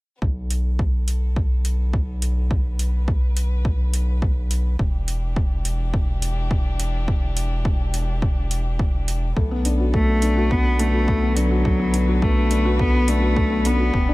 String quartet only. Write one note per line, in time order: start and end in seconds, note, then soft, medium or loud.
0.22 4.75 D3 medium
0.22 4.75 B3 medium
0.22 2.49 A4 medium
2.51 4.77 B4 medium
4.78 9.32 E3 medium
4.78 9.32 D4 medium
4.78 9.32 G4 medium
9.37 13.90 D3 medium
9.37 13.90 B3 medium
9.37 11.63 A4 medium
11.65 13.91 B4 medium
13.94 14.14 E3 medium
13.94 14.14 D4 medium
13.94 14.14 G4 medium